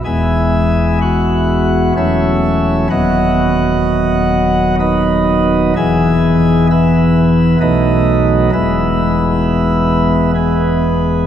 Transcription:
<<
  \new Staff \with { instrumentName = "Pipe organ" } { \time 3/4 \key e \major \tempo 4 = 64 <gis' e'' gis''>4 <fis' fis''>4 <e' cis'' e''>4 | <fis' dis'' fis''>2 <dis' b' dis''>4 | <gis' e'' gis''>4 <e' b' e''>4 <dis' b' dis''>4 | <e' b' e''>2 <b gis' b'>4 | }
  \new Staff \with { instrumentName = "Pipe organ" } { \clef bass \time 3/4 \key e \major <e,, e, gis b e'>2 <e,, e, fis a cis'>4 | <dis,, dis, fis b>2. | <e,, e, e b>2 <b,, b, fis a b>4 | <e,, e, e gis b>2. | }
>>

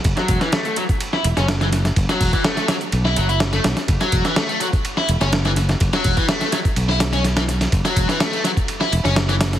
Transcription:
<<
  \new Staff \with { instrumentName = "Overdriven electric guitar" } { \time 4/4 \key fis \minor \tempo 4 = 125 r16 fis8 e16 a16 a16 fis16 r8 e'16 r16 cis'16 r16 e16 r8 | r16 fis8 e16 a16 a16 fis16 r8 e'16 fis16 e'16 r16 a16 r8 | r16 fis8 e16 a16 a16 fis16 r8 e'16 r16 cis'16 r16 e16 r8 | r16 fis8 e16 a16 a16 fis16 r8 e'16 r16 cis'16 r16 e16 r8 |
r16 fis8 e16 a16 a16 fis16 r8 e'16 r16 cis'16 r16 e16 r8 | }
  \new Staff \with { instrumentName = "Fingered electric bass" } { \clef bass \time 4/4 \key fis \minor fis,,16 r16 e,,16 r4. r16 e,,16 fis,,4 r16 | fis,,16 r16 e,,16 r4 r16 b,,8 fis,,8. r16 b,,16 r16 | fis,,16 r16 e,,16 r4. r16 e,,16 fis,,4 r16 | fis,,16 r16 e,,16 r4 r16 b,,4.~ b,,16 r16 |
fis,,16 r16 e,,16 r4. r16 e,,16 fis,,4 r16 | }
  \new DrumStaff \with { instrumentName = "Drums" } \drummode { \time 4/4 <hh bd cymr>16 <hh sn>16 <hh bd cymr>16 <hh sn>16 <hh cymr sn>16 hh16 <hh cymr>16 <hh bd>16 <hh cymr>16 sn16 <hh cymr>16 <hh sn>16 <hh cymr sn>16 <hh sn>16 <hh cymr sn>16 <hh sn>16 | <hh bd cymr>16 <hh sn>16 <hh hho bd>16 <hh bd>16 <hh cymr sn>16 <hh sn>16 <hh cymr sn>16 hh16 <hh cymr>16 sn16 <hh cymr>16 hh16 <hh cymr sn>16 <hh sn>16 <hh cymr sn>16 <hh sn>16 | <hh bd cymr>16 <hh sn>16 <hh bd cymr>16 <hh sn>16 <hh cymr sn>16 hh16 <hh cymr>16 <hh bd>16 <hh cymr>16 sn16 <hh cymr>16 <hh sn>16 <hh cymr sn>16 <hh sn>16 <hh cymr sn>16 <hh sn>16 | <hh bd cymr>16 <hh sn>16 <hh hho bd>16 <hh bd>16 <hh cymr sn>16 <hh sn>16 <hh cymr sn>16 <hh bd>16 <hh cymr>16 sn16 <hh cymr sn>16 <hh sn>16 <hh cymr sn>16 <hh cymr sn>16 <hh sn>16 <hh cymr sn>16 |
<hh bd cymr>16 <hh sn>16 <hh bd cymr>16 <hh sn>16 <hh cymr sn>16 hh16 <hh cymr sn>16 <hh bd>16 <hh cymr>16 sn16 <hh cymr>16 <hh sn>16 <hh cymr sn>16 <hh sn>16 <hh cymr sn>16 <hh sn>16 | }
>>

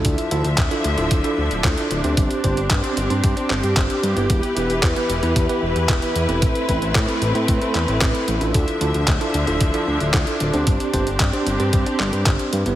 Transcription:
<<
  \new Staff \with { instrumentName = "Tine electric piano" } { \time 4/4 \key d \dorian \tempo 4 = 113 <d' e' f' a'>8 <d' e' f' a'>16 r8 <d' e' f' a'>16 r16 <d' e' f' a'>8 <d' e' f' a'>16 r8 <d' e' f' a'>8. <c' d' g' c''>16~ | <c' d' g' c''>8 <c' d' g' c''>16 r8 <c' d' g' c''>16 r16 <c' d' g' c''>8 <c' d' g' c''>16 r8 <c' d' g' c''>8. <b e' g' b'>16~ | <b e' g' b'>8 <b e' g' b'>16 r8 <b e' g' b'>16 r16 <b e' g' b'>8 <b e' g' b'>16 r8 <b e' g' b'>8. <c' e' a' b'>16~ | <c' e' a' b'>8 <c' e' a' b'>16 r8 <c' e' a' b'>16 r16 <c' e' a' b'>8 <c' e' a' b'>16 r8 <c' e' a' b'>8. <d' e' f' a'>16~ |
<d' e' f' a'>8 <d' e' f' a'>16 r8 <d' e' f' a'>16 r16 <d' e' f' a'>8 <d' e' f' a'>16 r8 <d' e' f' a'>8. <c' d' g' c''>16~ | <c' d' g' c''>8 <c' d' g' c''>16 r8 <c' d' g' c''>16 r16 <c' d' g' c''>8 <c' d' g' c''>16 r8 <c' d' g' c''>8. <b e' g' b'>16 | }
  \new Staff \with { instrumentName = "String section" } { \time 4/4 \key d \dorian << { <d f e''>1 | g'1 | <e b'>1 | <a c'>1 |
<d f e''>1 | g'1 | } \\ { d'1 | c'1 | e'1~ | e'1 |
d'1 | c'1 | } >> }
  \new Staff \with { instrumentName = "Analog synth bass" } { \clef bass \time 4/4 \key d \dorian d,16 r16 d,16 d,16 d,,16 r16 d,16 d,,16 d,,16 r16 d,16 d,,16 d,16 r16 d,,16 d,16 | g,,16 r16 g,,16 g,,16 g,16 r16 g,,16 g,16 g,16 r16 g,,16 g,16 g,,16 r16 g,16 g,,16 | e,,16 r16 e,,16 e,,16 e,16 r16 e,,16 e,16 e,16 r16 e,,16 e,16 e,,16 r16 e,16 e,,16 | a,,16 r16 a,,16 a,,16 a,16 r16 a,,16 a,16 a,16 r16 e,16 a,,16 a,,16 r16 a,,16 a,,16 |
d,16 r16 d,16 d,16 d,,16 r16 d,16 d,,16 d,,16 r16 d,16 d,,16 d,16 r16 d,,16 d,16 | g,,16 r16 g,,16 g,,16 g,16 r16 g,,16 g,16 g,16 r16 g,,16 g,16 g,,16 r16 g,16 g,,16 | }
  \new DrumStaff \with { instrumentName = "Drums" } \drummode { \time 4/4 <hh bd>16 hh16 hh16 hh16 <hc hh bd>16 hh16 hh16 hh16 <hh bd>16 hh8 hh16 <hc hh bd>16 hh16 hh16 hh16 | <hh bd>16 hh16 <hh bd>16 hh16 <hc hh bd>16 hh16 hh16 hh16 <hh bd>16 hh16 hc16 hh16 <hc hh bd>16 hh16 hh16 hh16 | <hh bd>16 hh16 hh16 hh16 <hc hh bd>16 hh16 hh16 hh16 <hh bd>16 hh8 hh16 <hc hh bd>16 hh16 hh16 hh16 | <hh bd>16 hh16 <hh bd>16 hh16 <hc hh bd>16 hh16 hh16 hh16 <hh bd>16 hh16 <hc hh>16 hh16 <hc hh bd>16 hh16 hh16 hh16 |
<hh bd>16 hh16 hh16 hh16 <hc hh bd>16 hh16 hh16 hh16 <hh bd>16 hh8 hh16 <hc hh bd>16 hh16 hh16 hh16 | <hh bd>16 hh16 <hh bd>16 hh16 <hc hh bd>16 hh16 hh16 hh16 <hh bd>16 hh16 hc16 hh16 <hc hh bd>16 hh16 hh16 hh16 | }
>>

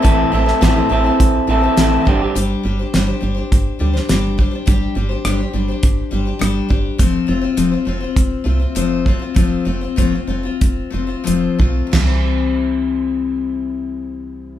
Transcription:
<<
  \new Staff \with { instrumentName = "Steel-string acoustic guitar" } { \time 4/4 \key c \major \tempo 4 = 103 <a, e a c' e' c''>8 <a c' e' c''>16 <a c' e' c''>16 <a, e a c' e' c''>16 <a c' e' c''>16 <a c' e' c''>16 <a c' e' c''>8. <a c' e' c''>16 <a c' e' c''>16 <a, e a c' e' c''>8 <g d' g' c''>8 | <g d' g' c''>8 <g d' g' c''>16 <d' g' c''>16 <g d' g' c''>16 <d' g' c''>16 <g d' g' c''>16 <d' g' c''>8. <g d' g' c''>16 <d' g' c''>16 <g d' g' c''>8 <g d' g' c''>16 <d' g' c''>16 | <g d' g' c''>8 <g d' g' c''>16 <d' g' c''>16 <g d' g' c''>16 <d' g' c''>16 <g d' g' c''>16 <d' g' c''>8. <g d' g' c''>16 <d' g' c''>16 <g d' g' c''>8 <g d' g' c''>8 | <f a c' f' c''>8 <a c' f' c''>16 <c' f' c''>16 <f a c' f' c''>16 <c' f' c''>16 <a c' f' c''>16 <c' f' c''>8. <a c' f' c''>16 <c' f' c''>16 <f a c' f' c''>8 <a c' f' c''>16 <c' f' c''>16 |
<f a c' f' c''>8 <a c' f' c''>16 <c' f' c''>16 <f a c' f' c''>16 <c' f' c''>16 <a c' f' c''>16 <c' f' c''>8. <a c' f' c''>16 <c' f' c''>16 <f a c' f' c''>8 <a c' f' c''>8 | <c e g c' e' c''>1 | }
  \new Staff \with { instrumentName = "Clean electric guitar" } { \time 4/4 \key c \major <a, e c' e' a'>8 <e c' e' a'>16 <c' e' a'>16 <a, e c' e' a'>16 <c' e' a'>16 <e c' e' a'>16 <c' e' a'>8. <e c' e' a'>16 <c' e' a'>16 <a, e c' e' a'>8 <g, d g c' d' g'>16 <g c' d' g'>16 | r1 | r1 | r1 |
r1 | r1 | }
  \new Staff \with { instrumentName = "FM bass" } { \clef bass \time 4/4 \key c \major a,,8 a,,8 a,,8 a,,8 a,,8 a,,8 a,,8 g,,8 | g,,8 g,,8 g,,8 g,,8 g,,8 d,8 g,,4 | g,,8 g,,8 g,,8 g,,8 g,,8 g,,8 g,,8 g,,8 | f,,8 f,,8 f,,8 f,,8 f,,8 c,8 f,,4 |
f,,8 f,,8 f,,8 f,,8 f,,8 f,,8 f,,8 b,,8 | c,1 | }
  \new DrumStaff \with { instrumentName = "Drums" } \drummode { \time 4/4 <hh bd>8. sn16 <hh bd sn>4 <hh bd>4 <hh sn>8 bd8 | hh4 <hh sn>4 <hh bd>8. sn16 <hh sn>8 bd8 | <hh bd>4 <hh ss>4 <hh bd>4 <hh ss>8 bd8 | <hh bd>4 hh4 <hh bd>4 hh8 bd8 |
<hh bd>4 <hh bd>4 <hh bd>4 hh8 bd8 | <cymc sn tomfh>4 r4 r4 r4 | }
>>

